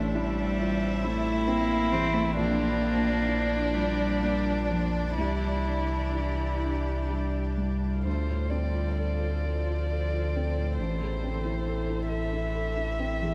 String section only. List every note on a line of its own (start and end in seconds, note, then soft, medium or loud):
0.00 2.33 C4 medium
0.00 2.37 E5 medium
2.38 5.18 F3 medium
2.38 8.06 D4 medium
2.38 8.06 D5 medium
5.16 8.05 G4 soft
8.05 10.74 F4 soft
8.05 13.34 A4 soft
8.05 13.34 C5 soft
10.77 13.34 E4 soft